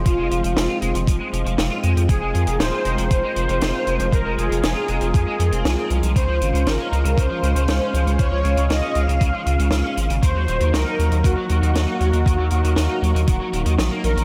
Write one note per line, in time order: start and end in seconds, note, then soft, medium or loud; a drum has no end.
0.00 6.12 G#3 medium
0.00 6.12 C4 medium
0.00 10.19 F4 medium
0.00 2.05 C5 medium
0.06 0.17 F1 medium
0.06 0.12 F3 medium
0.06 0.78 F4 loud
0.06 kick loud
0.06 closed hi-hat medium
0.18 0.30 F1 medium
0.18 0.25 G#3 medium
0.31 0.42 F1 medium
0.31 0.38 F3 medium
0.31 closed hi-hat medium
0.44 0.55 F1 medium
0.44 0.50 F3 medium
0.44 closed hi-hat medium
0.56 0.68 F1 loud
0.56 0.63 F3 medium
0.56 snare loud
0.56 closed hi-hat loud
0.69 0.76 F4 loud
0.82 0.93 F1 medium
0.82 0.88 G#3 loud
0.82 closed hi-hat medium
0.95 1.06 F1 medium
0.95 0.99 F3 loud
0.95 closed hi-hat medium
1.07 1.19 F1 loud
1.07 1.14 F3 medium
1.07 kick loud
1.07 closed hi-hat loud
1.20 1.26 G#3 medium
1.33 1.44 F1 medium
1.33 1.39 F3 medium
1.33 closed hi-hat medium
1.46 1.57 F1 medium
1.46 1.52 F3 medium
1.46 closed hi-hat medium
1.58 1.69 F1 loud
1.58 1.65 F3 medium
1.58 snare loud
1.58 closed hi-hat loud
1.71 1.77 F4 loud
1.83 1.95 F2 loud
1.83 1.90 G#3 loud
1.83 closed hi-hat medium
1.96 2.08 F2 medium
1.96 2.00 F3 medium
1.96 closed hi-hat medium
2.09 2.20 F1 loud
2.09 2.15 F3 medium
2.09 2.56 G#4 loud
2.09 6.12 A#4 medium
2.09 kick loud
2.09 closed hi-hat loud
2.22 2.33 F1 medium
2.22 2.28 G#3 medium
2.35 2.46 F2 medium
2.35 2.41 F3 medium
2.35 closed hi-hat medium
2.47 2.58 F1 medium
2.47 2.54 F3 medium
2.47 closed hi-hat medium
2.60 2.71 D#1 loud
2.60 2.66 F3 medium
2.60 3.10 C5 loud
2.60 snare loud
2.60 closed hi-hat medium
2.73 2.79 F4 loud
2.85 2.97 F1 medium
2.85 2.92 G#3 loud
2.85 closed hi-hat medium
2.98 3.09 F1 medium
2.98 3.02 F3 loud
2.98 closed hi-hat medium
3.11 3.22 F1 loud
3.11 3.17 F3 medium
3.11 4.16 C5 loud
3.11 kick loud
3.11 closed hi-hat loud
3.24 3.30 G#3 medium
3.36 3.47 F1 medium
3.36 3.43 F3 medium
3.36 closed hi-hat medium
3.49 3.60 F1 medium
3.49 3.55 F3 medium
3.49 closed hi-hat medium
3.61 3.73 F1 loud
3.61 3.68 F3 medium
3.61 snare loud
3.61 closed hi-hat loud
3.74 3.81 F4 loud
3.87 3.98 F1 medium
3.87 3.93 G#3 loud
3.87 closed hi-hat medium
4.00 4.11 F1 medium
4.00 4.04 F3 medium
4.00 closed hi-hat medium
4.12 4.24 F1 medium
4.12 4.19 F3 medium
4.12 4.36 A#4 loud
4.12 kick loud
4.12 closed hi-hat medium
4.25 4.36 F1 medium
4.25 4.32 G#3 medium
4.38 4.49 F1 medium
4.38 4.44 F3 medium
4.38 5.13 G#4 loud
4.38 closed hi-hat medium
4.51 4.62 F1 medium
4.51 4.57 F3 medium
4.51 closed hi-hat medium
4.63 4.74 F1 loud
4.63 4.70 F3 medium
4.63 snare loud
4.63 closed hi-hat loud
4.76 4.82 F4 loud
4.88 5.00 F1 medium
4.88 4.95 G#3 loud
4.88 closed hi-hat medium
5.01 5.13 F1 medium
5.01 5.05 F3 loud
5.01 closed hi-hat medium
5.14 5.25 F2 medium
5.14 5.21 F3 medium
5.14 5.86 G#4 medium
5.14 kick loud
5.14 closed hi-hat medium
5.27 5.33 G#3 medium
5.40 5.51 F2 medium
5.40 5.46 F3 medium
5.40 closed hi-hat medium
5.52 5.63 F1 medium
5.52 5.62 C4 loud
5.52 closed hi-hat medium
5.65 5.76 C2 loud
5.65 5.71 F3 loud
5.65 snare loud
5.65 closed hi-hat loud
5.78 5.87 C4 loud
5.90 6.02 C2 loud
5.90 5.97 F3 medium
5.90 closed hi-hat medium
6.03 6.14 C2 medium
6.03 6.10 F3 medium
6.03 closed hi-hat medium
6.16 6.27 C#2 medium
6.16 6.22 C#3 medium
6.16 10.19 G#3 medium
6.16 10.19 C#4 medium
6.16 6.68 C5 loud
6.16 10.19 F5 medium
6.16 kick loud
6.16 closed hi-hat medium
6.29 6.40 C#2 medium
6.29 6.35 F3 medium
6.41 6.52 G#1 medium
6.41 6.48 C#3 medium
6.41 closed hi-hat medium
6.54 6.65 C#2 medium
6.54 6.60 C#3 medium
6.54 closed hi-hat medium
6.67 6.78 G#1 loud
6.67 6.73 C#3 medium
6.67 7.19 A#4 medium
6.67 snare loud
6.67 closed hi-hat medium
6.79 6.86 C#4 loud
6.92 7.03 C#2 medium
6.92 6.99 F3 loud
6.92 closed hi-hat medium
7.05 7.16 C#2 medium
7.05 7.09 C#3 loud
7.05 closed hi-hat medium
7.18 7.29 C#2 loud
7.18 7.24 C#3 medium
7.18 8.22 C5 loud
7.18 kick loud
7.18 closed hi-hat loud
7.30 7.37 F3 medium
7.43 7.54 C#2 loud
7.43 7.49 C#3 medium
7.43 closed hi-hat medium
7.56 7.67 C#2 medium
7.56 7.62 C#3 medium
7.56 closed hi-hat medium
7.68 7.80 C#2 loud
7.68 7.75 C#3 medium
7.68 snare loud
7.68 closed hi-hat medium
7.81 7.88 C#4 loud
7.94 8.05 C#2 medium
7.94 8.00 F3 loud
7.94 closed hi-hat medium
8.07 8.18 C#2 medium
8.07 8.10 C#3 medium
8.07 closed hi-hat medium
8.19 8.30 C#2 medium
8.19 8.26 C#3 medium
8.19 8.67 C#5 loud
8.19 kick loud
8.19 closed hi-hat medium
8.32 8.43 C#2 medium
8.32 8.38 F3 medium
8.45 8.56 C#2 medium
8.45 8.51 C#3 medium
8.45 closed hi-hat medium
8.57 8.69 C#2 medium
8.57 8.64 C#3 medium
8.57 closed hi-hat medium
8.70 8.81 C#2 loud
8.70 8.76 C#3 medium
8.70 8.96 D#5 loud
8.70 snare loud
8.70 closed hi-hat medium
8.83 8.89 C#4 loud
8.95 9.07 C#2 medium
8.95 9.02 F3 loud
8.95 9.93 F5 loud
8.95 closed hi-hat medium
9.08 9.19 C#2 medium
9.08 9.12 C#3 loud
9.08 closed hi-hat medium
9.21 9.32 C#2 loud
9.21 9.27 C#3 medium
9.21 kick loud
9.21 closed hi-hat medium
9.34 9.40 F3 medium
9.46 9.58 C#2 medium
9.46 9.53 C#3 medium
9.46 closed hi-hat medium
9.59 9.70 C#2 medium
9.59 9.66 C#3 medium
9.59 closed hi-hat medium
9.71 9.83 C#2 loud
9.71 9.78 C#3 medium
9.71 snare loud
9.71 closed hi-hat medium
9.85 9.91 C#4 loud
9.97 10.08 G#1 loud
9.97 10.04 F3 medium
9.97 closed hi-hat medium
10.10 10.21 G#1 medium
10.10 10.14 C#3 medium
10.10 closed hi-hat medium
10.23 10.34 D#2 loud
10.23 10.29 D#3 medium
10.23 14.24 F#3 medium
10.23 14.24 A#3 medium
10.23 14.24 D#4 medium
10.23 14.24 A#4 medium
10.23 10.70 C5 loud
10.23 kick loud
10.23 closed hi-hat loud
10.35 10.47 D#2 medium
10.35 10.42 F#3 medium
10.48 10.59 D#1 medium
10.48 10.54 D#3 medium
10.48 closed hi-hat medium
10.60 10.72 D#2 medium
10.60 10.67 D#3 medium
10.60 closed hi-hat medium
10.73 10.85 C#2 loud
10.73 10.80 D#3 medium
10.73 11.26 A#4 loud
10.73 snare loud
10.73 closed hi-hat medium
10.86 10.93 D#4 loud
10.99 11.10 D#2 medium
10.99 11.05 F#3 loud
10.99 closed hi-hat medium
11.12 11.23 D#2 medium
11.12 11.15 D#3 loud
11.12 closed hi-hat medium
11.24 11.36 D#2 loud
11.24 11.31 D#3 medium
11.24 13.75 F#4 medium
11.24 kick loud
11.24 closed hi-hat medium
11.37 11.43 F#3 medium
11.49 11.61 D#2 loud
11.49 11.56 D#3 medium
11.49 closed hi-hat medium
11.62 11.74 D#2 medium
11.62 11.69 D#3 medium
11.62 closed hi-hat medium
11.75 11.86 D#2 loud
11.75 11.81 D#3 medium
11.75 snare loud
11.75 closed hi-hat medium
11.88 11.94 D#4 loud
12.00 12.12 D#2 loud
12.00 12.07 F#3 loud
12.00 closed hi-hat medium
12.13 12.24 D#2 medium
12.13 12.17 D#3 loud
12.13 closed hi-hat medium
12.26 12.37 D#2 loud
12.26 12.32 D#3 medium
12.26 kick loud
12.26 closed hi-hat medium
12.39 12.50 D#2 medium
12.39 12.45 F#3 medium
12.50 12.63 D#2 medium
12.50 12.58 D#3 medium
12.50 closed hi-hat medium
12.64 12.75 D#2 medium
12.64 12.71 D#3 medium
12.64 closed hi-hat medium
12.76 12.88 D#2 loud
12.76 12.83 D#3 medium
12.76 snare loud
12.76 closed hi-hat loud
12.89 12.96 D#4 loud
13.02 13.13 D#2 loud
13.02 13.09 F#3 loud
13.02 closed hi-hat medium
13.15 13.26 D#2 medium
13.15 13.19 D#3 loud
13.15 closed hi-hat medium
13.28 13.39 D#1 loud
13.28 13.34 D#3 medium
13.28 kick loud
13.28 closed hi-hat medium
13.40 13.47 F#3 medium
13.53 13.64 D#1 medium
13.53 13.60 D#3 loud
13.53 closed hi-hat medium
13.66 13.77 D#2 medium
13.66 13.72 D#3 medium
13.66 closed hi-hat medium
13.78 13.90 A#1 medium
13.78 13.88 D#3 medium
13.78 snare loud
13.78 closed hi-hat medium
13.91 14.01 A#3 loud
14.04 14.15 A#1 loud
14.04 14.10 D#3 medium
14.04 14.24 A#4 loud
14.04 closed hi-hat medium
14.17 14.24 A#1 medium
14.17 14.23 D#3 medium
14.17 closed hi-hat medium